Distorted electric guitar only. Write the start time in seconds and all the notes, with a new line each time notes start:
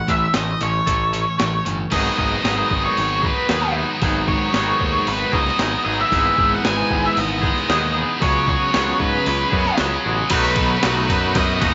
0.08 A2 E3
0.35 A2 E3
0.61 A2 E3
0.87 A2 E3
1.13 A2 E3
1.39 A2 E3
1.65 A2 E3
1.90 G#2 D#3 G#3 B3 D#4
2.43 G#2 D#3 G#3 B3 D#4
2.70 G#3 B3 D#4
3.22 G#3 B3 D#4
3.49 D#3 G#3 B3 D#4
4.01 G#2 D#3 G#3 B3 D#4
4.54 G#2 D#3 G#3 B3 D#4
4.80 G#3 B3 D#4
5.32 G#3 B3 D#4
5.59 D#3 G#3 B3 D#4
6.11 G#2 E3 G#3 B3
6.64 G#2 E3 G#3 B3
6.91 G#3 B3
7.44 G#3 B3
7.68 E3 G#3 B3
8.20 C#3 G#3 C#4
8.71 C#3 G#3 C#4
9.00 G#3 C#4
9.53 G#3 C#4
9.78 C#3 G#3 C#4
10.30 B2 D#3 F#3 B3 D#4 B4
10.83 F#3 B3 D#4 B4
11.09 F#3 B3 D#4 B4
11.35 B2 D#3 F#3 B3 D#4 B4
11.61 F#3 B3 D#4 B4